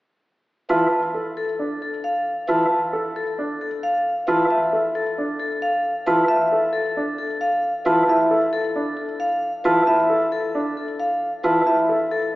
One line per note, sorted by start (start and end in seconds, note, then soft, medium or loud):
0.69 0.87 E3 medium
0.69 0.99 F4 medium
0.69 0.99 A5 medium
1.14 1.44 A4 soft
1.37 1.66 A4 medium
1.59 1.88 D4 soft
1.82 2.11 A4 soft
2.04 2.33 F5 medium
2.48 2.66 E3 medium
2.48 2.78 F4 medium
2.48 2.78 A5 medium
2.93 3.23 A4 soft
3.16 3.45 A4 medium
3.39 3.68 D4 soft
3.61 3.90 A4 soft
3.83 4.12 F5 medium
4.28 4.45 E3 medium
4.28 4.57 F4 medium
4.28 4.57 A5 medium
4.51 4.80 E5 soft
4.73 5.02 A4 soft
4.95 5.24 A4 medium
5.18 5.47 D4 soft
5.40 5.69 A4 soft
5.62 5.91 F5 medium
6.07 6.24 E3 medium
6.07 6.36 F4 medium
6.07 6.36 A5 medium
6.28 6.58 E5 medium
6.52 6.81 A4 soft
6.73 7.03 A4 medium
6.97 7.26 D4 medium
7.18 7.48 A4 soft
7.41 7.70 F5 medium
7.86 8.03 E3 medium
7.86 8.15 F4 medium
7.86 8.15 A5 medium
8.08 8.38 E4 medium
8.08 8.38 E5 medium
8.31 8.60 A4 soft
8.53 8.82 A4 medium
8.76 9.05 D4 medium
8.97 9.27 A4 soft
9.20 9.49 F5 medium
9.65 9.82 E3 medium
9.65 9.94 F4 medium
9.65 9.94 A5 medium
9.87 10.17 E4 soft
9.87 10.17 E5 medium
10.10 10.39 A4 soft
10.32 10.61 A4 medium
10.55 10.84 D4 medium
10.77 11.06 A4 soft
11.00 11.29 F5 medium
11.44 11.61 E3 medium
11.44 11.73 F4 medium
11.44 11.74 A5 medium
11.66 11.96 E4 medium
11.66 11.96 E5 soft
11.89 12.18 A4 soft
12.11 12.35 A4 medium